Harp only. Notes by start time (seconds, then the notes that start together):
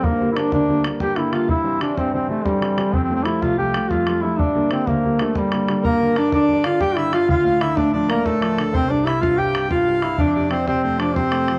Already playing: C5 D5 E5
0.03 A#4
0.18 C5
0.35 D5
0.50 D5
1.01 G5
1.16 E5
1.32 F5
1.48 E5
1.65 E5
1.82 D5
1.98 C5
2.14 C5
2.30 A4
2.46 G4
2.94 C5
3.15 C5
3.26 E5
3.42 F5
3.58 G5
3.91 F5
4.22 E5
4.39 D5
4.70 C5
4.87 A#4
5.20 A4
5.36 G4
5.83 A#4
6.16 D5
6.32 D5
6.43 D5
6.53 D5
6.64 F5
6.81 G5
6.96 E5
7.12 F5
7.28 F5
7.44 F5
7.60 E5
7.76 D5
7.93 D5
8.09 A#4
8.25 A4
8.74 C5
9.07 E5
9.23 F5
9.39 G5
9.71 F5
10.02 E5
10.19 D5
10.30 D5
10.41 D5
10.52 C5
10.68 C5
11.16 C5